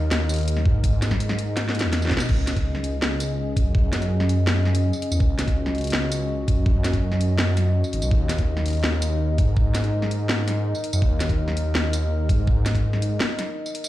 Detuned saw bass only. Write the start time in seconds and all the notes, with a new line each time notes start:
Already playing: D#2
0.11 D#2
0.65 G#2
1.84 E2
2.11 B2
2.29 C#2
3.02 C#2
3.56 F#2
5.11 E2
5.20 C#2
5.93 C#2
6.48 F#2
7.93 G#1
8.03 B1
8.11 D#2
8.84 D#2
9.38 G#2
10.93 F#2
11.02 D#2
11.75 D#2
12.29 G#2